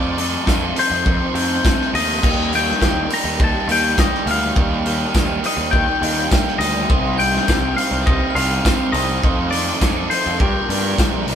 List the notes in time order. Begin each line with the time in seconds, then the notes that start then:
Already playing: F2 C3 D#3 F3 A3 C4 D#4 A4 D5 D6
0.18 F2 C3 D#3 F3 A3 C4 D#4 A4, open hi-hat
0.46 F2 C3 D#3 F3 A3 C4 D#4 A4, kick, snare, tambourine
0.75 F2 C3 D#3 F3 A3 C4 D#4 A4 C5 C6, open hi-hat
0.91 F2
1.05 F2 C3 D#3 F3 A3 C4 D#4 A4, kick
1.34 F2 C3 D#3 F3 A3 C4 D#4 A4, open hi-hat
1.64 F2 C3 D#3 F3 A3 C4 D#4 A4, kick, snare, tambourine
1.81 snare
1.94 D#2 F2 C3 D#3 F3 A3 C4 D#4 A4 D#5 D#6, open hi-hat
2.23 D#2 D#3 G3 A#3 D#4 G4 A#4 D5 G5, kick, crash
2.53 D#3 G3 A#3 D#4 G4 G5 G6, open hi-hat
2.69 snare
2.81 D#2 D#3 G3 A#3 D#4 G4, kick, snare, tambourine
3.10 D#3 G3 A#3 D#4 G4 A#5 A#6, open hi-hat
3.24 D#2
3.40 D#2 D#3 G3 A#3 D#4 G4 A6, kick
3.44 A5
3.68 D#2 D#3 G3 A#3 D#4 G6, open hi-hat
3.72 G4 G5
3.98 D#3 G3 A#3 D#4 G4 D#5 D#6, kick, snare, tambourine
4.14 snare
4.26 D2 D#3 G3 A#3 D#4 G4 F6, open hi-hat
4.31 F5
4.56 D#2 D#3 G3 A#3 D#4 G4, kick
4.85 D#3 G3 A#3 D#4 G4, open hi-hat
5.14 D#2 D#3 G3 A#3 D#4 G4, kick, snare, tambourine
5.43 D#3 G3 A#3 D#4 G4 D#5 D#6, open hi-hat
5.57 D#2
5.71 D#2 D#3 G3 A#3 D#4 G4 G5 G6, kick
6.02 D#2 D#3 G3 A#3 D#4 G4, open hi-hat
6.31 D#3 G3 A#3 D#4 G4, kick, snare, tambourine
6.47 snare
6.59 D2 D#3 G3 A#3 D#4 G4 D#5 D#6, open hi-hat
6.90 C2 C3 G3 C4 D#4 G4 C5, kick
7.18 C3 G3 C4 D#4 G4 G5 G6, open hi-hat
7.36 snare
7.48 C2 C3 G3 C4 D#4 G4, kick, snare, tambourine
7.74 F5 F6
7.78 C3 G3 C4 D#4 G4, open hi-hat
7.91 C2
8.03 C2 C3 G3 D#5 D#6
8.07 C4 D#4 G4, kick
8.30 F6
8.35 C2 C3 G3 C4 D#4 G4 F5, open hi-hat
8.64 C3 G3 C4 D#4 G4, kick, snare, tambourine
8.92 C2 C3 G3 C4 D#4 G4 D#5 D#6, open hi-hat
9.22 F2 C3 D#3 F3 A3 C4 D#4 A4 F5, kick
9.50 F2 C3 D#3 F3 A3 C4 D#4 A4 D5 D6, open hi-hat
9.79 F2 C3 D#3 F3 A3 C4 D#4 A4, kick, snare, tambourine
10.10 F2 C3 D#3 F3 A3 C4 D#4 A4 C5 C6, open hi-hat
10.26 F2
10.40 G2 D3 G3 A#3 D4 F4 G4 A#4 D5 G5, kick
10.69 G2 D3 G3 A#3 D4 A#4, open hi-hat
10.98 G2 D3 G3 A#3 D4 A#4, kick, snare, tambourine
11.13 A#1
11.27 C2 G2 D3 G3 A#3 D4 A#4, open hi-hat